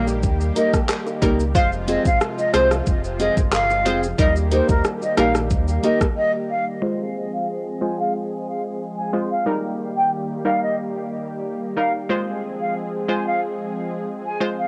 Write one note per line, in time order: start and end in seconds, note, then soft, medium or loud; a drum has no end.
0.00 0.25 A#1 loud
0.00 1.52 D#3 medium
0.00 1.52 G3 medium
0.00 1.52 A#3 medium
0.00 0.10 D#4 medium
0.00 0.10 G4 loud
0.00 1.52 G4 medium
0.00 0.11 A#4 medium
0.08 high bongo medium
0.08 shaker medium
0.23 0.51 D#2 loud
0.23 kick medium
0.23 shaker medium
0.41 shaker medium
0.55 0.76 A#3 medium
0.55 0.76 D#4 medium
0.55 0.76 G4 medium
0.55 0.77 A#4 medium
0.55 0.71 D#5 medium
0.55 closed hi-hat medium
0.55 shaker soft
0.74 kick loud
0.74 cross-stick medium
0.74 high bongo medium
0.74 shaker medium
0.89 cross-stick loud
0.89 clap loud
0.89 high bongo medium
0.89 shaker medium
1.07 high bongo medium
1.07 shaker medium
1.21 1.57 C#2 loud
1.21 1.36 G3 medium
1.21 1.42 A#3 medium
1.21 1.36 D#4 medium
1.21 1.42 D#4 medium
1.21 1.42 G4 medium
1.21 1.37 A#4 medium
1.21 1.43 A#4 medium
1.21 kick loud
1.21 closed hi-hat medium
1.21 low bongo medium
1.21 shaker medium
1.40 shaker medium
1.55 1.98 F1 loud
1.55 4.16 C3 medium
1.55 4.16 F3 medium
1.55 2.16 G#3 loud
1.55 4.16 G#3 medium
1.55 2.16 F4 medium
1.55 4.16 F4 medium
1.55 2.16 C5 loud
1.55 1.70 F5 loud
1.55 kick loud
1.55 shaker medium
1.72 shaker medium
1.87 2.07 C4 medium
1.87 2.08 F4 medium
1.87 2.08 G#4 medium
1.87 2.08 C5 medium
1.87 2.03 D#5 medium
1.87 closed hi-hat medium
1.87 shaker medium
2.05 2.18 G#1 loud
2.05 2.19 F5 medium
2.05 kick loud
2.05 shaker medium
2.21 cross-stick loud
2.21 high bongo medium
2.21 shaker medium
2.38 2.52 D#5 medium
2.38 muted nylon-string guitar stroke medium
2.38 shaker medium
2.53 2.82 C2 medium
2.53 2.68 G#3 medium
2.53 2.73 C4 medium
2.53 2.68 F4 medium
2.53 2.74 F4 medium
2.53 2.74 G#4 medium
2.53 2.69 C5 medium
2.53 2.68 C5 medium
2.53 2.74 C5 medium
2.53 cross-stick loud
2.53 closed hi-hat medium
2.53 low bongo medium
2.53 shaker medium
2.71 cross-stick medium
2.71 high bongo medium
2.71 shaker medium
2.87 3.30 F1 loud
2.87 kick medium
2.87 shaker medium
3.04 shaker medium
3.19 3.39 C4 medium
3.19 3.40 F4 loud
3.19 3.40 G#4 loud
3.19 3.40 C5 loud
3.19 3.35 D#5 medium
3.19 closed hi-hat medium
3.19 shaker medium
3.37 3.87 G1 medium
3.37 kick loud
3.37 high bongo medium
3.37 shaker medium
3.53 4.00 F5 medium
3.53 cross-stick loud
3.53 clap loud
3.53 high bongo medium
3.53 shaker medium
3.70 high bongo medium
3.70 shaker medium
3.85 4.14 F1 loud
3.85 4.00 G#3 medium
3.85 4.05 C4 medium
3.85 4.00 F4 medium
3.85 4.06 F4 medium
3.85 4.06 G#4 medium
3.85 4.00 C5 medium
3.85 4.06 C5 medium
3.85 closed hi-hat medium
3.85 low bongo medium
3.85 shaker medium
4.03 shaker medium
4.18 4.61 D#2 loud
4.18 6.80 D#3 medium
4.18 4.80 G3 loud
4.18 6.80 G3 medium
4.18 6.80 A#3 medium
4.18 4.80 D#4 medium
4.18 6.80 G4 medium
4.18 4.80 A#4 loud
4.18 4.34 D#5 loud
4.18 kick loud
4.18 shaker medium
4.36 shaker medium
4.51 4.71 A#3 medium
4.51 4.72 D#4 medium
4.51 4.72 G4 loud
4.51 4.72 A#4 loud
4.51 4.67 C5 medium
4.51 closed hi-hat medium
4.51 shaker medium
4.69 4.82 D#2 loud
4.69 4.82 A#4 medium
4.69 kick loud
4.69 shaker medium
4.84 cross-stick loud
4.84 high bongo medium
4.84 shaker medium
5.02 5.15 D#5 medium
5.02 muted nylon-string guitar stroke soft
5.02 shaker medium
5.17 5.52 A#1 loud
5.17 5.32 G3 medium
5.17 5.37 A#3 medium
5.17 5.32 D#4 medium
5.17 5.38 D#4 medium
5.17 5.38 G4 loud
5.17 5.32 A#4 medium
5.17 5.38 A#4 medium
5.17 5.33 F5 medium
5.17 cross-stick medium
5.17 closed hi-hat medium
5.17 low bongo medium
5.17 shaker medium
5.35 cross-stick medium
5.35 high bongo medium
5.35 shaker medium
5.50 5.79 D#2 loud
5.50 kick medium
5.50 shaker medium
5.68 shaker medium
5.83 6.03 A#3 medium
5.83 6.03 D#4 loud
5.83 6.04 G4 medium
5.83 6.04 A#4 loud
5.83 5.99 D#5 medium
5.83 closed hi-hat medium
5.83 shaker soft
6.01 kick medium
6.01 cross-stick loud
6.01 high bongo medium
6.01 shaker medium
6.17 6.31 D#5 medium
6.50 6.64 F5 medium
6.82 9.44 F3 medium
6.82 7.43 G#3 medium
6.82 9.44 G#3 medium
6.82 9.44 C4 medium
6.82 7.43 F4 medium
6.82 9.44 G#4 medium
6.82 7.44 C5 loud
7.33 7.46 F5 medium
7.81 7.96 G#3 medium
7.81 7.96 F4 medium
7.81 7.96 C5 medium
7.81 7.96 G#5 medium
7.99 8.12 F5 medium
8.98 9.11 G#5 medium
9.13 9.28 G#3 medium
9.13 9.28 F4 medium
9.13 9.28 C5 medium
9.31 9.44 F5 medium
9.46 12.07 D#3 medium
9.46 10.07 G3 medium
9.46 12.07 G3 medium
9.46 12.07 A#3 medium
9.46 10.07 D#4 medium
9.46 12.07 G4 medium
9.46 10.07 A#4 loud
9.97 10.10 G5 medium
10.45 10.59 G3 medium
10.45 10.60 D#4 medium
10.45 10.60 A#4 medium
10.45 10.60 F5 medium
10.63 10.76 D#5 medium
11.77 11.91 G3 medium
11.77 11.91 D#4 medium
11.77 11.92 A#4 medium
11.77 11.92 F5 medium
12.09 14.68 F3 medium
12.09 12.71 G#3 medium
12.09 14.68 G#3 medium
12.09 14.68 C4 medium
12.09 12.71 F4 medium
12.09 14.68 G#4 medium
12.09 12.71 C5 loud
12.60 12.74 F5 medium
13.08 13.23 G#3 medium
13.08 13.23 F4 medium
13.08 13.23 C5 medium
13.08 13.24 G#5 medium
13.26 13.39 F5 medium
14.25 14.38 G#5 medium
14.40 14.55 G#3 medium
14.40 14.55 F4 medium
14.40 14.55 C5 medium
14.58 14.68 F5 medium